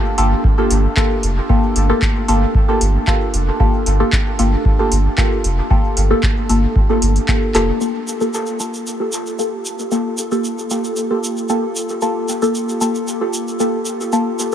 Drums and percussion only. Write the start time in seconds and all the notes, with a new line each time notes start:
0.18 open hi-hat
0.44 kick
0.71 open hi-hat
0.97 kick, clap
1.23 open hi-hat
1.49 kick
1.76 open hi-hat
2.02 kick, clap
2.28 open hi-hat
2.55 kick
2.81 open hi-hat
3.07 kick, clap
3.34 open hi-hat
3.60 kick
3.86 open hi-hat
4.13 kick, clap
4.39 open hi-hat
4.65 kick
4.92 open hi-hat
5.18 kick, clap
5.44 open hi-hat
5.70 kick
5.97 open hi-hat
6.23 kick, clap
6.49 open hi-hat
6.76 kick
7.02 open hi-hat
7.16 open hi-hat
7.28 kick, clap
7.55 clap, open hi-hat
7.81 shaker
8.08 shaker
8.21 shaker
8.34 shaker
8.46 shaker
8.60 shaker
8.74 shaker
8.87 shaker
9.13 shaker
9.26 shaker
9.39 shaker
9.65 shaker
9.79 shaker
9.92 shaker
10.18 shaker
10.32 shaker
10.44 shaker
10.58 shaker
10.70 shaker
10.84 shaker
10.96 shaker
11.24 shaker
11.37 shaker
11.49 shaker
11.76 shaker
11.89 shaker
12.02 shaker
12.29 shaker
12.42 shaker
12.55 shaker
12.69 shaker
12.81 shaker
12.95 shaker
13.08 shaker
13.34 shaker
13.48 shaker
13.60 shaker
13.85 shaker
14.01 shaker
14.13 shaker
14.39 shaker